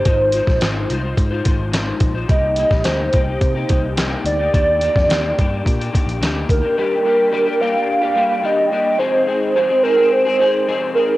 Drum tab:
HH |x-x-x-x-x-x-x-x-|x-x-x-x-x-x-x-x-|x-x-x-x-xxxxx-x-|----------------|
SD |---oo-------o---|---oo-------o---|---oo-------o---|----------------|
BD |o--o----o-o---o-|o--o--o-o-o-----|o--o--o-o-o---o-|----------------|

HH |----------------|
SD |----------------|
BD |----------------|